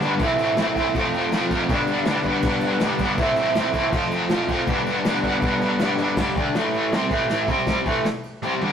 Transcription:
Already playing: G2 D3
0.01 G3 B3 D4, snare
0.19 A2 E3 A3, kick, crash
0.23 C4 E4
0.39 ride
0.57 E3 A3, snare, ride
0.61 C4 E4
0.76 C4 E4, kick, ride
0.80 A3
0.94 F3 A3 C4, kick, ride
0.99 F4
1.14 ride
1.32 F3 A3 C4 F4, snare, ride
1.50 A3 C4 F4, kick, ride
1.69 G2 D3 G3 B3, kick, ride
1.73 D4
1.87 ride
2.05 D3 G3 B3, snare, ride
2.10 D4
2.23 B3 D4, kick, ride
2.29 G3
2.42 kick, ride
2.61 ride
2.80 G2 D3 G3, snare, ride
2.84 B3 D4
2.98 B3 D4, kick, ride
3.03 G3
3.17 A2 E3 A3 C4, kick, ride
3.22 E4
3.36 ride
3.55 E3 A3 C4, snare, ride
3.59 E4
3.73 A3 C4 E4, kick, ride
3.91 F3 A3 C4 F4, kick, ride
4.11 ride
4.29 F3 A3 C4 F4, snare, ride
4.48 A3 C4 F4, kick, ride
4.67 G2 D3 G3 B3, kick, ride
4.71 D4
4.86 ride
5.05 D3 G3 B3, snare, ride
5.09 D4
5.23 G3 B3 D4, kick, ride
5.42 kick, ride
5.61 ride
5.79 G2 D3 G3 B3 D4, snare, ride
5.98 B3 D4, snare
6.02 G3
6.17 G2 D3 G3, kick, snare, crash
6.36 D3 A3 D4, kick, ride
6.54 A2 E3 A3, snare, ride
6.73 ride
6.92 C3 G3 C4, snare, ride
7.10 A2 E3 A3, kick, ride
7.29 snare, ride
7.48 C3 G3 C4, kick, ride
7.66 kick, snare, ride
7.85 A2 E3 A3, kick, ride
8.05 snare, ride
8.23 ride
8.43 C3 G3 C4, snare
8.61 G2 D3 G3, high tom

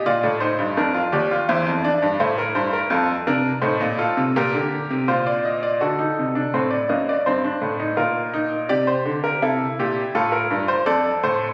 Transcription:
0.06 A#2 F4 D5
0.23 A2
0.40 D#4 C5
0.59 G2
0.77 F2 D4 A#4
0.94 F4
1.12 D#2 G4 D5
1.31 F4
1.49 E2 E4 C5
1.66 F2
1.84 D4 D5
2.02 G2
2.20 A2 E4 C5
2.38 A#4
2.55 G2 C5
2.73 A#4
2.90 F2 F4 A4
3.27 C3 D4 A#4
3.62 A2 D#4 C5
3.81 A#2
3.99 F4 A4
4.17 C3
4.36 A#2 G4 A#4
4.54 D3
4.90 C3
5.08 A#2 F4 C5
5.27 D5
5.45 D#5
5.63 D5
5.81 D3 F#4 A4
5.99 D#4
6.19 C3
6.35 D4
6.54 A2 C4 C5
6.70 D5
6.89 F#2 A#3 D#5
7.09 D5
7.26 G2 C4 C5
7.44 D4
7.61 A2
7.80 D#4
7.97 A#2 F4 A#4
8.34 D#4
8.69 C3 G4 D5
8.87 C5
9.05 D3
9.24 A#4
9.42 C3 E4 A4
9.79 A#2 G4
10.15 A2 F4 A4
10.32 A#4
10.51 G2
10.68 C5
10.86 F2 A4 D5
11.23 A2 C5

